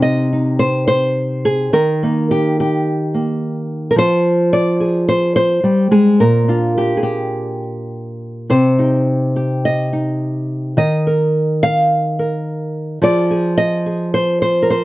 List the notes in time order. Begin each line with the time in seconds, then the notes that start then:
Already playing: C3 C4 D#4
0.02 D#5
0.33 D#4
0.59 C5
0.88 C5
1.45 G#4
1.73 D#3 A#4
2.03 A#3 D#4
2.31 G4
2.60 G4
3.14 A#3
3.91 A#4
3.96 F3 C5
4.53 D5
4.80 G#4
5.09 C5
5.36 C5
5.64 G3
5.91 G#3 G#4
6.20 A#2 A#4
6.48 D4 F4
6.78 G4
6.97 G#4
7.03 G4
8.50 C3 C5
8.79 D#4 G4
9.36 G4
9.65 D#5
9.93 D#4
10.77 D#3 D#5
11.07 A#4
11.63 F5
12.19 A#4
13.02 F3 F4 G#4 D5
13.31 G#4
13.58 D#5
13.86 G#4
14.14 C5
14.42 C5
14.62 A#4
14.70 C5